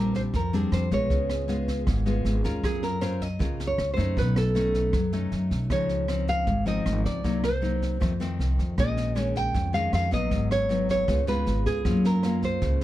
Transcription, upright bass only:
Already playing: A#1
0.33 F2
0.72 F2
0.91 A#1
1.10 C#2
1.87 G#1
2.25 G#1
2.45 D#2
2.64 F#2
3.40 C#2
3.78 C#2
3.98 F#2
4.17 B1
4.93 F#2
5.32 F#2
5.51 B1
5.70 C#2
6.48 G#1
6.86 G#1
7.05 C#2
7.25 C2
8.02 F2
8.39 C2
8.59 F2
8.78 A#1
9.54 F2
9.93 F2
10.13 A#1
10.32 G#1
11.08 C#2
11.47 G#1
11.66 C#2
11.85 F#2
12.62 C#2

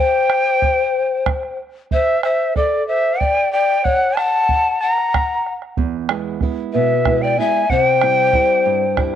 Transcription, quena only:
Already playing: G5
1.92 E5
2.24 E5
2.57 D5
2.88 E5
3.20 G5
3.53 G5
3.84 F#5
4.16 A5
4.81 A#5
6.73 E5
7.22 G5
7.38 G#5
7.70 F#5
7.86 G5

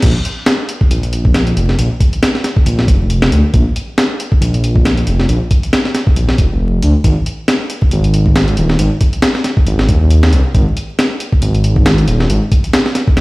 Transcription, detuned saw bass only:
0.03 A#1
0.90 A#1
1.56 F1
1.79 A#1
2.66 A#1
2.88 F1
3.00 F1
3.32 D2
3.54 A#1
4.41 A#1
5.07 F1
5.29 A#1
6.17 A#1
6.38 F1
6.52 F1
6.83 D2
7.04 G#1
7.92 G#1
8.58 D#1
8.79 G#1
9.67 G#1
9.89 D#2
10.01 D#2
10.33 C2
10.55 G#1
11.43 G#1
12.08 D#1
12.30 G#1
13.17 C2

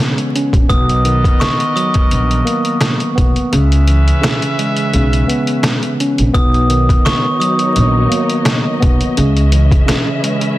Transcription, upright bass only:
0.53 A#1
0.70 B1
2.12 A#1
3.18 B1
3.53 C#2
4.94 B1
6.19 A#1
6.35 B1
7.76 A#1
8.83 B1
9.18 C#2

